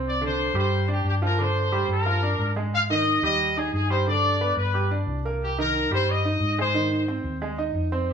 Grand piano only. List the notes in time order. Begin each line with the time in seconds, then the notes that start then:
Already playing: C4 C5
0.21 D3 D4
0.55 G3 G4
0.88 D4 D5
1.22 F3 F4
1.38 D3 D4
1.72 G3 G4
2.06 F3 F4
2.23 D4 D5
2.56 G#3 G#4
2.90 D#3 D#4
3.23 G3 G4
3.57 D#4 D#5
3.90 G3 G4
4.07 D3 D4
4.41 B3 B4
4.74 G3 G4
4.91 D4 D5
5.25 A#3 A#4
5.58 D#3 D#4
5.91 G3 G4
6.25 D#4 D#5
6.58 G#3 G#4
6.75 D#3 D#4
7.08 C4 C5
7.42 G#3 G#4
7.58 D#4 D#5
7.92 C4 C5